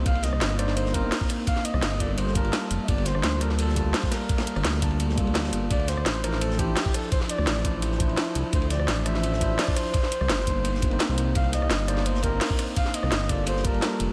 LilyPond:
<<
  \new Staff \with { instrumentName = "Flugelhorn" } { \time 4/4 \key c \dorian \tempo 4 = 170 f''8 ees''4 d''8 c''8 bes'4 r8 | f''8 ees''4 d''16. d''32 c''8 bes'4 r16. e''32 | d''8 c''4 bes'8 a'4 c''8 bes'8~ | bes'2~ bes'8. r4 r16 |
d''8 c''4 bes'8 a'8 g'4 a'8 | c''8 d''2 r4. | c''8 d''4 e''4. d''8 c''8~ | c''2.~ c''8 r8 |
f''8 ees''4 d''8 c''8 bes'4 r8 | f''8 ees''4 d''8 c''8 bes'4 r8 | }
  \new Staff \with { instrumentName = "Tine electric piano" } { \time 4/4 \key c \dorian <bes c' ees' c''>4. <bes d' ees' c''>4 <bes c' ees' c''>4.~ | <bes c' ees' c''>4. <g bes f' a'>4 <g bes f' a''>4.~ | <g bes f' a''>4. <g bes f' a'>4 <g bes f' a''>4.~ | <g bes f' a''>4. <g bes f' a''>4 <g bes f' a'>4. |
r4. <f d' e' c''>4 <f d' e' c''>4.~ | <f d' e' c''>4. <f d' e' c''>4 <f d' e' c''>4.~ | <f d' e' c''>4. <f d' e' c''>4 <f d' e' c''>4. | r4. <bes d' ees' c''>4 r16 <bes c' ees' c''>4~ <bes c' ees' c''>16~ |
<bes c' ees' c''>4. <bes d' ees' c''>4 <bes c' ees' c''>4.~ | <bes c' ees' c''>4. <g bes f' a'>4 <g bes f' a''>4. | }
  \new Staff \with { instrumentName = "Detuned saw bass" } { \clef bass \time 4/4 \key c \dorian c,8. c,16 g,,2 r4 | r8. c,16 g,,4 g,,4 r8 f,,16 r16 | g,,8. g,,16 d,2 r4 | r8. g,,16 d,4. c,16 d,8. g,,8 |
d,8. d,16 a,,2 r4 | r8. d,16 a,,2 r8 c,16 r16 | d,8. d,16 a,,2 r4 | r8. c,16 g,,2 r16 c,8. |
c,8. c,16 g,,2 r4 | r8. c,16 g,,4 g,,4 r8 f,,16 r16 | }
  \new DrumStaff \with { instrumentName = "Drums" } \drummode { \time 4/4 <hh bd cymr>16 cymr16 <hh cymr sn>16 ss16 <hh cymr sn>8 <hh cymr ss>16 <cymr sn>16 <hh cymr>16 sn16 <hh bd cymr>8 <hh hho sn>16 <bd sn>16 <hh cymr ss>8 | <hh bd cymr>16 sn16 <hh cymr>16 ss16 <hh cymr sn>16 sn16 <hh bd cymr>8 <hh cymr>16 sn16 <hh bd cymr>16 cymr16 <hh cymr sn>16 sn16 <hh cymr>8 | <hh bd cymr>16 cymr16 <hh cymr sn>16 ss16 <hh cymr sn>8 <hh cymr ss>16 <cymr sn>16 <hh cymr>16 sn16 <hh bd cymr>8 <hh hho sn>16 <bd sn>16 <hh cymr ss sn>8 | <hh bd cymr>16 <cymr sn>16 hh16 <cymr ss>16 <hh cymr sn>16 sn16 <hh bd cymr>16 cymr16 <hh cymr>16 sn16 <hh bd cymr>16 cymr16 <hh cymr sn>16 <cymr sn>16 <hh cymr>8 |
<hh bd cymr>16 cymr16 <hh cymr sn>16 ss16 <hh cymr sn>8 <hh cymr ss>16 <cymr sn>16 <hh cymr>16 sn16 <hh bd cymr>8 <hh hho sn>16 <bd sn>16 <hh cymr ss>8 | <hh bd cymr>16 sn16 <hh cymr>16 ss16 <hh cymr sn>16 sn16 <hh bd cymr>8 <hh cymr>16 sn16 <hh bd cymr>16 cymr16 <hh cymr sn>16 sn16 <hh cymr>8 | <hh bd cymr>16 cymr16 <hh cymr sn>16 ss16 <hh cymr sn>8 <hh cymr ss>16 <cymr sn>16 <hh cymr>16 sn16 <hh bd cymr>8 <hh hho sn>16 <bd sn>16 <hh cymr ss>8 | <hh bd cymr>16 sn16 <hh cymr>16 ss16 <hh cymr sn>16 sn16 <hh bd cymr>8 <hh cymr>16 sn16 <hh bd cymr>16 cymr16 <hh cymr sn>16 sn16 <hh cymr>8 |
<hh bd cymr>16 cymr16 <hh cymr sn>16 ss16 <hh cymr sn>8 <hh cymr ss>16 <cymr sn>16 <hh cymr>16 sn16 <hh bd cymr>8 <hh hho sn>16 <bd sn>16 <hh cymr ss>8 | <hh bd cymr>16 sn16 <hh cymr>16 ss16 <hh cymr sn>16 sn16 <hh bd cymr>8 <hh cymr>16 sn16 <hh bd cymr>16 cymr16 <hh cymr sn>16 sn16 <hh cymr>8 | }
>>